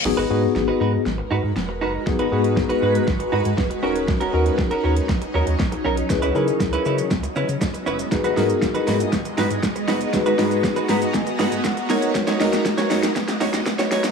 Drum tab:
CC |x---------------|----------------|----------------|----------------|
HH |----------------|-x-x-x-x-x-x-x-x|-x-x-x-x-x-x-x-x|-x-x-x-x-x-x-x-x|
SH |----------------|----------------|----------------|xxxxxxxxxxxxxxxx|
SD |o---o---o---o---|o---o---o---o---|o---o---o---o---|o---o---o---o---|
BD |----------------|o---o---o---o---|o---o---o---o---|o---o---o---o---|

CC |----------------|----------------|----------------|
HH |-xox-xox-xox-xox|-xox-xox-xox-xox|-xox-xox-xox-xox|
SH |xxxxxxxxxxxxxxxx|xxxxxxxxxxxxxxxx|xxxxxxxxxxxxxxxx|
SD |o-o-o-o-o-o-o-o-|o-o-o-o-o-o-o-o-|oooooooooooooooo|
BD |o---o---o---o---|o---o---o---o---|o---o---o---o---|